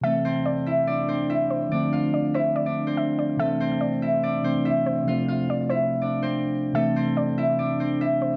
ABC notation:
X:1
M:4/4
L:1/16
Q:1/4=143
K:Am
V:1 name="Synth pluck"
e4 d4 z6 c2 | z4 d2 c2 d4 e2 d2 | e4 d4 z6 c2 | z4 d2 c8- c2 |
e4 d4 z6 c2 |]
V:2 name="Harp"
[A,A]2 [Cc]4 [Ee]2 [Dd]2 [Cc]2 [Ee]2 z2 | [Dd]2 [Ff]4 [Ee]3 [Dd]2 [Cc]4- [Cc] | [A,A]2 [Cc]4 [Ee]2 [Dd]2 [Cc]2 [Ee]2 z2 | [Ff]2 [Ff]4 [Ee]3 [Dd]2 [Cc]4- [Cc] |
[A,A]2 [Cc]4 [Ee]2 [Dd]2 [Cc]2 [Ee]2 z2 |]
V:3 name="Tine electric piano" clef=bass
[C,E,A,C]16 | [D,F,A,C]16 | [C,E,A,C]8- [C,E,A,C]2 [C,E,A,C]6 | [C,F,A,C]16 |
[C,E,A,C]16 |]